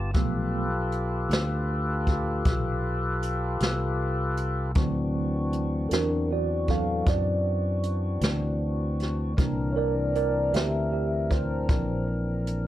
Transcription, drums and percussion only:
0.14 kick medium
0.14 closed hi-hat medium
0.92 closed hi-hat medium
1.31 snare loud
1.31 closed hi-hat medium
2.07 kick medium
2.07 closed hi-hat soft
2.45 kick loud
2.45 closed hi-hat medium
3.23 closed hi-hat medium
3.61 snare medium
3.61 closed hi-hat medium
4.37 closed hi-hat medium
4.75 kick loud
4.75 closed hi-hat medium
5.53 closed hi-hat medium
5.91 snare medium
5.91 closed hi-hat medium
6.67 kick medium
6.67 closed hi-hat soft
7.06 kick medium
7.06 closed hi-hat medium
7.83 closed hi-hat medium
8.21 snare loud
8.21 closed hi-hat medium
9.00 snare soft
9.00 closed hi-hat soft
9.38 kick loud
9.38 closed hi-hat medium
10.15 closed hi-hat medium
10.54 snare medium
10.54 closed hi-hat medium
11.31 kick medium
11.31 closed hi-hat medium
11.69 kick loud
11.69 closed hi-hat medium
12.47 closed hi-hat medium

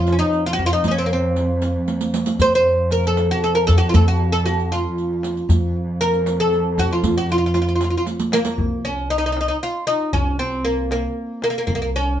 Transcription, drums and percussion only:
0.07 riq soft
0.07 tombak tek medium
0.33 riq soft
0.59 tombak tek medium
0.72 riq soft
0.84 riq medium
0.84 tombak dum medium
1.10 riq soft
1.36 riq soft
1.36 tombak tek medium
1.49 tombak ka soft
1.62 riq soft
1.62 tombak tek medium
1.88 riq medium
1.88 tombak tek medium
2.01 riq medium
2.01 tombak ka medium
2.14 riq medium
2.14 tombak tek medium
2.26 riq medium
2.26 tombak ka medium
2.39 riq medium
2.39 tombak dum medium
2.65 tombak ka soft
2.91 riq soft
2.91 tombak tek medium
3.04 riq soft
3.17 riq soft
3.17 tombak tek medium
3.43 riq soft
3.68 riq soft
3.68 tombak tek medium
3.81 riq soft
3.81 tombak ka soft
3.94 riq medium
3.94 tombak dum medium
4.20 tombak ka soft
4.46 riq soft
4.46 tombak tek medium
4.59 riq soft
4.72 riq soft
4.72 tombak tek medium
4.98 riq soft
5.23 riq medium
5.23 tombak tek medium
5.36 riq soft
5.36 tombak ka soft
5.49 riq medium
5.49 tombak dum medium
5.75 tombak ka soft
6.01 riq medium
6.01 tombak tek medium
6.13 riq soft
6.26 riq medium
6.26 tombak tek medium
6.53 riq soft
6.78 riq medium
6.78 tombak tek medium
6.91 riq soft
7.03 riq medium
7.03 tombak dum loud
7.29 riq soft
7.55 riq medium
7.55 tombak tek medium
7.68 riq soft
7.81 riq medium
7.81 tombak tek medium
8.07 riq medium
8.07 tombak tek medium
8.19 riq medium
8.19 tombak ka medium
8.32 riq medium
8.32 tombak tek medium
8.45 riq medium
8.45 tombak ka medium
8.58 tombak dum medium
8.84 tombak ka soft
9.10 tombak tek soft
9.37 tombak tek medium
9.87 tombak tek medium
10.00 tombak ka soft
10.13 tombak dum medium
10.39 tombak ka soft
10.91 tombak tek medium
11.42 tombak tek medium
11.55 tombak ka soft
11.67 tombak dum medium
11.94 tombak ka soft

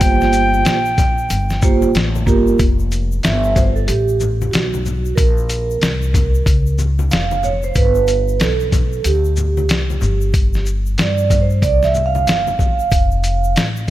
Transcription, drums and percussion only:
0.01 kick loud
0.01 closed hi-hat loud
0.01 shaker medium
0.21 snare soft
0.21 shaker soft
0.33 closed hi-hat medium
0.33 shaker medium
0.33 shaker soft
0.54 high conga soft
0.54 shaker soft
0.65 snare loud
0.65 closed hi-hat medium
0.65 shaker medium
0.85 shaker soft
0.98 kick medium
0.98 closed hi-hat medium
0.98 high conga medium
0.98 low conga medium
0.98 shaker soft
0.98 shaker medium
1.18 shaker soft
1.30 closed hi-hat medium
1.30 shaker medium
1.50 snare soft
1.50 shaker soft
1.62 kick medium
1.62 low conga medium
1.62 shaker medium
1.62 shaker soft
1.82 high conga medium
1.82 shaker soft
1.94 snare loud
1.94 closed hi-hat medium
1.94 shaker medium
2.15 high conga medium
2.15 shaker soft
2.27 kick medium
2.27 low conga medium
2.27 shaker soft
2.47 shaker soft
2.59 kick loud
2.59 closed hi-hat medium
2.59 shaker medium
2.79 shaker soft
2.91 closed hi-hat medium
2.91 shaker soft
2.91 shaker medium
3.12 shaker soft
3.23 snare loud
3.23 closed hi-hat soft
3.23 shaker medium
3.44 shaker soft
3.56 kick medium
3.56 closed hi-hat medium
3.56 high conga soft
3.56 low conga medium
3.56 shaker medium
3.56 shaker soft
3.76 shaker soft
3.88 closed hi-hat medium
3.88 shaker medium
4.08 shaker medium
4.20 low conga medium
4.20 shaker medium
4.20 shaker soft
4.42 high conga medium
4.42 shaker soft
4.53 snare loud
4.53 closed hi-hat medium
4.53 shaker medium
4.74 high conga medium
4.74 shaker medium
4.86 low conga medium
4.86 shaker soft
5.05 shaker medium
5.17 kick loud
5.17 closed hi-hat loud
5.17 shaker medium
5.38 shaker soft
5.50 closed hi-hat medium
5.50 shaker medium
5.50 shaker soft
5.70 shaker soft
5.81 snare loud
5.81 closed hi-hat medium
5.81 shaker medium
6.02 shaker soft
6.14 kick medium
6.14 closed hi-hat medium
6.14 high conga soft
6.14 low conga medium
6.14 shaker medium
6.14 shaker soft
6.35 shaker soft
6.46 kick medium
6.46 closed hi-hat medium
6.46 shaker medium
6.66 shaker soft
6.78 low conga medium
6.78 shaker soft
6.99 high conga medium
6.99 shaker soft
7.11 snare loud
7.11 closed hi-hat medium
7.11 shaker medium
7.31 high conga medium
7.31 shaker soft
7.43 low conga medium
7.43 shaker soft
7.63 shaker soft
7.75 kick loud
7.75 closed hi-hat medium
7.75 shaker medium
7.95 shaker soft
8.07 closed hi-hat medium
8.07 shaker soft
8.07 shaker medium
8.28 shaker soft
8.40 snare loud
8.40 closed hi-hat medium
8.40 shaker medium
8.60 shaker soft
8.72 kick medium
8.72 closed hi-hat medium
8.72 high conga medium
8.72 low conga medium
8.72 shaker soft
8.92 shaker soft
9.04 closed hi-hat medium
9.04 shaker medium
9.25 shaker soft
9.36 low conga medium
9.36 shaker medium
9.36 shaker soft
9.57 high conga medium
9.57 shaker soft
9.69 snare loud
9.69 closed hi-hat medium
9.69 shaker medium
9.90 high conga medium
9.90 shaker soft
10.01 low conga medium
10.01 shaker soft
10.21 shaker soft
10.34 kick loud
10.34 closed hi-hat loud
10.34 shaker medium
10.53 snare soft
10.53 shaker soft
10.66 shaker medium
10.66 shaker soft
10.86 shaker soft
10.98 snare loud
10.98 closed hi-hat medium
10.98 shaker medium
11.18 shaker soft
11.30 kick medium
11.30 closed hi-hat medium
11.30 high conga soft
11.30 low conga medium
11.30 shaker medium
11.30 shaker soft
11.50 shaker soft
11.62 kick medium
11.62 closed hi-hat medium
11.62 shaker medium
11.82 snare soft
11.82 shaker soft
11.95 low conga medium
11.95 shaker soft
12.15 high conga medium
12.15 shaker soft
12.27 snare loud
12.27 closed hi-hat medium
12.27 shaker medium
12.47 high conga medium
12.47 shaker soft
12.59 kick medium
12.59 low conga medium
12.59 shaker soft
12.79 shaker soft
12.91 kick loud
12.91 closed hi-hat loud
12.91 shaker medium
13.11 shaker soft
13.23 closed hi-hat medium
13.23 shaker soft
13.23 shaker medium
13.44 shaker soft
13.56 snare loud
13.56 closed hi-hat medium
13.56 shaker medium
13.76 shaker soft

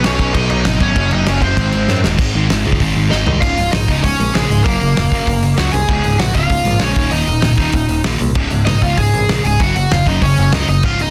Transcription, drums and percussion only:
0.04 snare loud
0.04 crash medium
0.19 kick medium
0.19 crash medium
0.34 kick loud
0.34 crash medium
0.50 crash medium
0.65 snare loud
0.65 crash medium
0.80 kick medium
0.80 crash medium
0.96 kick loud
0.96 crash medium
1.11 crash medium
1.26 snare loud
1.26 crash medium
1.42 kick medium
1.42 crash medium
1.57 kick loud
1.57 crash medium
1.72 crash medium
1.88 snare medium
2.04 snare loud
2.19 kick loud
2.19 crash loud
2.50 snare loud
2.50 open hi-hat medium
2.72 kick medium
2.80 kick loud
2.80 open hi-hat medium
3.12 snare medium
3.27 floor tom medium
3.42 kick loud
3.42 crash loud
3.58 open hi-hat medium
3.73 snare loud
3.73 open hi-hat medium
3.88 kick medium
3.88 open hi-hat medium
4.04 kick medium
4.04 open hi-hat medium
4.20 open hi-hat medium
4.35 snare loud
4.35 open hi-hat medium
4.51 open hi-hat medium
4.66 kick loud
4.66 open hi-hat medium
4.81 open hi-hat medium
4.97 snare loud
4.97 open hi-hat medium
5.12 kick medium
5.12 open hi-hat medium
5.27 kick loud
5.27 open hi-hat medium
5.43 open hi-hat medium
5.57 snare loud
5.57 open hi-hat medium
5.73 open hi-hat medium
5.89 kick loud
5.89 crash medium
6.04 open hi-hat medium
6.19 snare loud
6.19 open hi-hat medium
6.35 kick medium
6.35 open hi-hat medium
6.50 kick medium
6.50 open hi-hat medium
6.65 open hi-hat medium
6.79 snare loud
6.79 open hi-hat medium
6.96 kick loud
6.96 open hi-hat medium
7.11 open hi-hat medium
7.27 open hi-hat medium
7.42 snare loud
7.42 open hi-hat medium
7.57 kick medium
7.57 open hi-hat medium
7.73 kick medium
7.73 open hi-hat medium
7.89 open hi-hat medium
8.04 snare loud
8.04 open hi-hat medium
8.19 open hi-hat medium
8.35 kick loud
8.35 crash loud
8.51 open hi-hat medium
8.67 snare loud
8.67 open hi-hat medium
8.82 kick medium
8.82 open hi-hat medium
8.97 kick medium
8.97 open hi-hat medium
9.13 open hi-hat medium
9.29 snare loud
9.29 open hi-hat medium
9.45 open hi-hat medium
9.60 kick loud
9.60 open hi-hat medium
9.76 open hi-hat medium
9.91 snare loud
9.91 open hi-hat medium
10.06 kick medium
10.06 open hi-hat medium
10.22 kick loud
10.22 open hi-hat medium
10.37 open hi-hat medium
10.52 snare loud
10.52 open hi-hat medium
10.68 open hi-hat medium
10.83 kick loud
10.83 crash loud
10.99 open hi-hat medium

